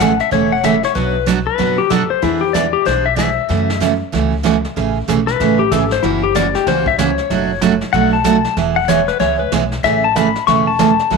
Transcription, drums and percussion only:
0.00 kick soft
0.00 snare medium
0.00 hi-hat pedal medium
0.20 snare soft
0.32 brush sweep soft
0.32 kick soft
0.32 snare soft
0.64 kick soft
0.64 snare medium
0.64 hi-hat pedal soft
0.83 snare soft
0.96 brush sweep medium
0.96 kick soft
0.96 snare soft
1.27 kick soft
1.27 snare medium
1.27 hi-hat pedal medium
1.59 brush sweep soft
1.59 kick soft
1.59 snare soft
1.91 kick soft
1.91 snare medium
1.91 hi-hat pedal medium
2.23 brush sweep soft
2.23 kick soft
2.23 snare soft
2.55 kick soft
2.55 snare medium
2.55 hi-hat pedal medium
2.86 brush sweep soft
2.86 kick soft
2.86 snare soft
3.18 kick soft
3.18 snare medium
3.18 hi-hat pedal medium
3.50 brush sweep medium
3.50 kick soft
3.50 snare soft
3.70 snare medium
3.81 kick soft
3.81 snare medium
3.81 hi-hat pedal medium
4.13 brush sweep soft
4.13 kick soft
4.13 snare soft
4.45 kick soft
4.45 snare medium
4.45 hi-hat pedal soft
4.64 snare soft
4.77 brush sweep soft
4.77 kick soft
4.77 snare soft
5.08 kick soft
5.08 snare medium
5.08 hi-hat pedal medium
5.28 snare soft
5.40 brush sweep soft
5.40 kick soft
5.40 snare soft
5.72 kick soft
5.72 snare medium
5.72 hi-hat pedal medium
5.91 snare soft
6.03 brush sweep soft
6.03 kick soft
6.03 snare soft
6.35 kick soft
6.35 snare medium
6.35 hi-hat pedal medium
6.54 snare soft
6.67 brush sweep soft
6.67 kick soft
6.67 snare soft
6.86 kick medium
6.98 kick soft
6.98 snare medium
6.98 hi-hat pedal medium
7.18 snare soft
7.30 brush sweep medium
7.30 kick soft
7.30 snare soft
7.61 kick soft
7.61 snare medium
7.61 hi-hat pedal medium
7.81 snare soft
7.93 brush sweep soft
7.93 kick soft
7.93 snare soft
8.25 kick soft
8.25 snare medium
8.25 hi-hat pedal medium
8.44 snare soft
8.57 brush sweep medium
8.57 kick soft
8.57 snare soft
8.89 kick soft
8.89 snare medium
8.89 hi-hat pedal medium
9.08 snare soft
9.20 brush sweep soft
9.20 kick soft
9.20 snare soft
9.52 kick soft
9.52 snare medium
9.52 hi-hat pedal medium
9.72 snare soft
9.84 brush sweep soft
9.84 kick soft
9.84 snare soft
10.16 kick soft
10.16 snare medium
10.16 hi-hat pedal medium
10.35 snare soft
10.48 brush sweep soft
10.48 kick soft
10.48 snare soft
10.79 kick soft
10.79 snare medium
10.79 hi-hat pedal medium
10.99 snare soft
11.11 brush sweep soft
11.11 kick soft
11.11 snare soft

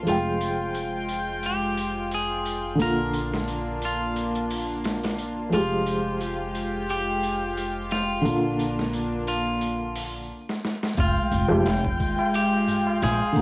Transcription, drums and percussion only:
0.07 open hi-hat medium
0.41 open hi-hat medium
0.75 open hi-hat medium
1.09 open hi-hat medium
1.43 open hi-hat medium
1.77 open hi-hat medium
2.11 open hi-hat medium
2.45 open hi-hat medium
2.79 open hi-hat medium
3.14 open hi-hat medium
3.34 snare soft
3.48 open hi-hat medium
3.82 open hi-hat medium
4.16 open hi-hat medium
4.35 closed hi-hat soft
4.50 open hi-hat medium
4.84 snare medium
4.84 open hi-hat medium
5.03 snare medium
5.03 open hi-hat medium
5.18 open hi-hat medium
5.52 open hi-hat medium
5.86 open hi-hat medium
6.21 open hi-hat medium
6.55 open hi-hat medium
6.89 open hi-hat medium
7.23 open hi-hat medium
7.57 open hi-hat medium
7.91 snare medium
7.91 open hi-hat medium
8.25 open hi-hat medium
8.59 open hi-hat medium
8.79 snare soft
8.93 open hi-hat medium
9.27 open hi-hat medium
9.61 open hi-hat medium
9.95 open hi-hat medium
10.49 snare soft
10.65 snare medium
10.83 snare medium
10.97 kick loud
10.97 open hi-hat medium
10.97 tabla na medium
11.16 tabla na soft
11.32 open hi-hat medium
11.32 tabla ge medium
11.50 tabla na medium
11.66 snare loud
11.66 open hi-hat medium
11.66 tabla na medium
11.84 kick loud
11.84 tabla na soft
12.00 kick loud
12.00 open hi-hat medium
12.19 tabla na medium
12.34 open hi-hat medium
12.34 tabla na medium
12.52 tabla na soft
12.67 open hi-hat medium
12.67 tabla ge medium
12.87 tabla na medium
13.02 snare loud
13.02 open hi-hat medium
13.02 tabla na medium
13.20 tabla na soft
13.36 kick medium
13.36 open hi-hat medium

